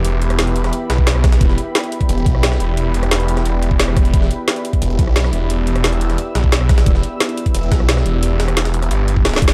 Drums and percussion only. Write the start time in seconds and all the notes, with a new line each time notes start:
0.05 closed hi-hat
0.22 closed hi-hat
0.30 cross-stick, closed hi-hat
0.39 snare, closed hi-hat
0.47 closed hi-hat
0.56 closed hi-hat
0.64 cross-stick, snare, closed hi-hat
0.73 closed hi-hat
0.90 snare, closed hi-hat
0.98 kick
1.07 snare, closed hi-hat
1.15 cross-stick
1.24 kick, cross-stick, snare, closed hi-hat
1.32 snare, closed hi-hat
1.41 kick, closed hi-hat
1.49 snare
1.58 closed hi-hat
1.75 snare, closed hi-hat
1.84 closed hi-hat
1.92 closed hi-hat
2.01 kick, closed hi-hat
2.09 closed hi-hat
2.18 closed hi-hat
2.26 kick, closed hi-hat
2.35 cross-stick
2.43 snare, closed hi-hat
2.52 cross-stick, snare
2.60 closed hi-hat
2.77 closed hi-hat
2.94 closed hi-hat
3.03 cross-stick, closed hi-hat
3.11 snare, closed hi-hat
3.20 closed hi-hat
3.28 closed hi-hat
3.37 cross-stick, snare, closed hi-hat
3.45 closed hi-hat
3.62 closed hi-hat
3.71 kick
3.80 snare, closed hi-hat
3.88 cross-stick
3.97 kick, cross-stick, closed hi-hat
4.05 closed hi-hat
4.14 kick, closed hi-hat
4.22 snare
4.31 closed hi-hat
4.48 snare, closed hi-hat
4.56 closed hi-hat
4.65 closed hi-hat
4.73 kick, closed hi-hat
4.82 closed hi-hat
4.90 closed hi-hat
4.99 kick, closed hi-hat
5.07 cross-stick
5.16 snare, closed hi-hat
5.24 cross-stick, snare
5.33 closed hi-hat
5.50 closed hi-hat
5.67 closed hi-hat
5.76 cross-stick, closed hi-hat
5.84 snare, closed hi-hat
5.93 closed hi-hat
6.01 closed hi-hat
6.10 cross-stick, snare, closed hi-hat
6.18 closed hi-hat
6.35 snare, closed hi-hat
6.44 kick
6.52 snare, closed hi-hat
6.61 cross-stick
6.69 kick, cross-stick, snare, closed hi-hat
6.78 snare, closed hi-hat
6.86 kick, closed hi-hat
6.95 snare
7.03 closed hi-hat
7.20 snare, closed hi-hat
7.29 closed hi-hat
7.37 closed hi-hat
7.46 kick, closed hi-hat
7.55 closed hi-hat
7.63 closed hi-hat
7.72 kick, snare, closed hi-hat
7.80 cross-stick
7.89 snare, closed hi-hat
7.97 cross-stick, snare
8.06 closed hi-hat
8.23 closed hi-hat
8.40 snare, closed hi-hat
8.48 cross-stick, closed hi-hat
8.57 snare, closed hi-hat
8.65 snare, closed hi-hat
8.74 closed hi-hat
8.82 cross-stick, closed hi-hat
8.91 closed hi-hat
9.08 closed hi-hat
9.16 kick
9.25 snare, closed hi-hat
9.29 snare, closed hi-hat
9.34 snare, closed hi-hat
9.36 snare, closed hi-hat
9.42 kick, closed hi-hat
9.48 snare, closed hi-hat